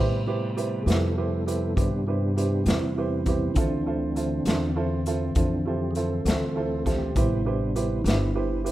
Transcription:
Already playing: upright bass A2, tonewheel organ C3 G3 B3, upright piano E4 G4 B4 C5
0.26 upright piano E4 G4 B4 C5
0.57 upright piano E4 G4 B4 C5, closed hi-hat
0.83 upright bass F2, upright piano E4 G4, tonewheel organ E4 G#4
0.88 tonewheel organ A4, upright piano B4 C5, snare, closed hi-hat
1.17 upright piano E4 G4 B4 C5, tonewheel organ E4 A4
1.46 upright piano E4 G4 B4 C5, tonewheel organ E4 A4, closed hi-hat
1.76 upright bass G2, tonewheel organ D4 G4, upright piano E4 G4 B4 C5, kick, closed hi-hat
2.07 tonewheel organ D4 G4, upright piano E4 G4 B4 C5
2.36 tonewheel organ D4 G4, upright piano E4 G4 B4 C5, closed hi-hat
2.64 upright bass E2, tonewheel organ C4 E4, upright piano E4 G4, closed hi-hat
2.68 upright piano B4 C5, snare
2.94 tonewheel organ C4 E4, upright piano E4 G4 B4
2.99 upright piano C5
3.24 tonewheel organ C4 E4, upright piano E4 G4 B4, kick, closed hi-hat
3.29 upright piano C5
3.54 upright bass D2, tonewheel organ D3 E3 C4 D4, upright piano E4 F4 A4 C5, kick, closed hi-hat
3.86 upright piano E4 F4 A4 C5
4.15 upright piano E4 F4 A4 C5, closed hi-hat
4.45 upright bass E2, upright piano E4 F4 A4 C5, snare, closed hi-hat
4.75 upright piano E4 F4 A4 C5
5.06 upright piano E4 F4 A4 C5, closed hi-hat
5.35 upright bass F2, tonewheel organ D4, upright piano E4 F4 A4 C5, kick, closed hi-hat
5.65 upright piano E4 F4 A4 C5, tonewheel organ G4
5.91 tonewheel organ G#4
5.95 upright piano E4 F4 A4 C5, tonewheel organ A4, closed hi-hat
6.25 upright bass D2, upright piano E4 F4 A4 C5, snare, closed hi-hat
6.55 upright piano E4 F4 A4 C5
6.85 upright piano E4 F4 A4 C5, tonewheel organ G4, kick, closed hi-hat
6.89 snare
7.15 upright bass A1, tonewheel organ C3 G3 B3 E4, upright piano E4 G4 B4 C5, kick, closed hi-hat
7.45 tonewheel organ D4, upright piano E4 G4 B4 C5
7.75 upright piano E4 G4 B4 C5, tonewheel organ E4, closed hi-hat
8.02 upright bass G1, tonewheel organ D#4, closed hi-hat
8.06 upright piano E4 G4 B4 C5, tonewheel organ E4, snare
8.34 upright piano E4 G4 B4 C5
8.64 upright piano E4 G4 B4 C5, closed hi-hat

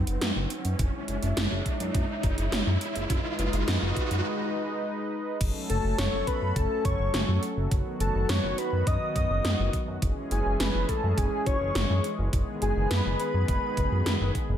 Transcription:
Already playing: analog synth pad F#3 D#4 B4 F#5, riser
0.07 analog synth bass F#1, closed hi-hat
0.21 analog synth bass F#2, snare, closed hi-hat
0.36 analog synth bass F#1
0.50 closed hi-hat
0.65 analog synth bass F#2, closed hi-hat
0.79 analog synth bass F#1, analog synth pad G#3 E4 C#5 E5, kick, closed hi-hat
1.08 analog synth bass F#1, closed hi-hat
1.22 analog synth bass F#1, closed hi-hat
1.37 analog synth bass F#1, snare, closed hi-hat
1.51 analog synth bass F#1
1.66 kick, closed hi-hat
1.80 analog synth bass F#2, closed hi-hat
1.95 analog synth bass F#1, kick, closed hi-hat
2.23 analog synth bass F#1, kick, closed hi-hat
2.38 analog synth bass F#1, closed hi-hat
2.52 analog synth bass F#1, snare, closed hi-hat
2.67 analog synth bass F#2
2.81 closed hi-hat
2.96 analog synth bass F#1, closed hi-hat
3.10 analog synth bass F#1, analog synth pad G#3 D#4 B4 D#5, kick, closed hi-hat
3.39 analog synth bass F#1, closed hi-hat
3.53 analog synth bass F#1, closed hi-hat
3.68 analog synth bass F#2, snare, closed hi-hat
3.82 analog synth bass F#1
3.96 kick, closed hi-hat
4.11 analog synth bass F#2, closed hi-hat
5.41 analog synth bass F#1, analog synth pad F#3 A3 C#4 A4, kick, closed hi-hat, crash
5.70 analog synth bass F#1, soft synth lead A4, digital synth lead A5, closed hi-hat
5.84 analog synth bass F#1
5.98 analog synth bass F#1, soft synth lead C#5, digital synth lead C#6, snare, closed hi-hat
6.13 analog synth bass F#1
6.27 soft synth lead B4, digital synth lead B5, kick, closed hi-hat
6.42 analog synth bass F#2
6.56 analog synth bass F#1, soft synth lead A4, digital synth lead A5, kick, closed hi-hat
6.85 analog synth bass F#1, soft synth lead C#5, digital synth lead C#6, kick, closed hi-hat
7.00 analog synth bass F#1
7.14 analog synth bass F#1, snare, closed hi-hat
7.28 analog synth bass F#2
7.43 closed hi-hat
7.57 analog synth bass F#1
7.71 analog synth bass F#1, analog synth pad D#3 B3 F#4, kick, closed hi-hat
8.00 analog synth bass F#1, soft synth lead A4, digital synth lead A5, closed hi-hat
8.15 analog synth bass F#1
8.29 analog synth bass F#2, soft synth lead C#5, digital synth lead C#6, snare, closed hi-hat
8.44 analog synth bass F#1
8.58 soft synth lead B4, digital synth lead B5, closed hi-hat
8.73 analog synth bass F#2
8.87 analog synth bass F#2, soft synth lead D#5, digital synth lead D#6, kick, closed hi-hat
9.16 analog synth bass F#2, soft synth lead D#5, digital synth lead D#6, kick, closed hi-hat
9.30 analog synth bass F#1
9.45 analog synth bass F#2, snare, closed hi-hat
9.59 analog synth bass F#1
9.73 kick, closed hi-hat
9.88 analog synth bass F#2
10.02 analog synth bass F#1, analog synth pad E3 G#3 C#4 G#4, kick, closed hi-hat
10.31 analog synth bass F#1, soft synth lead G#4, digital synth lead G#5, closed hi-hat
10.46 analog synth bass F#1
10.60 analog synth bass F#1, soft synth lead B4, digital synth lead B5, snare, closed hi-hat
10.74 analog synth bass F#1
10.89 soft synth lead A4, digital synth lead A5, kick, closed hi-hat
11.03 analog synth bass F#2
11.18 analog synth bass F#1, soft synth lead G#4, digital synth lead G#5, kick, closed hi-hat
11.46 analog synth bass F#1, soft synth lead C#5, digital synth lead C#6, kick, closed hi-hat
11.61 analog synth bass F#1
11.75 analog synth bass F#1, snare, closed hi-hat
11.90 analog synth bass F#2
12.04 closed hi-hat
12.19 analog synth bass F#1
12.33 analog synth bass F#1, analog synth pad D#3 B3 G#4, kick, closed hi-hat
12.62 analog synth bass F#1, soft synth lead G#4, digital synth lead G#5, closed hi-hat
12.76 analog synth bass F#1
12.91 analog synth bass F#2, soft synth lead B4, digital synth lead B5, snare, closed hi-hat
13.05 analog synth bass F#1
13.20 soft synth lead B4, digital synth lead B5, closed hi-hat
13.34 analog synth bass F#2
13.48 analog synth bass F#1, kick, closed hi-hat
13.77 analog synth bass F#1, kick, closed hi-hat
13.92 analog synth bass F#2
14.06 analog synth bass F#2, snare, closed hi-hat
14.21 analog synth bass F#1
14.35 kick, closed hi-hat
14.49 analog synth bass F#1

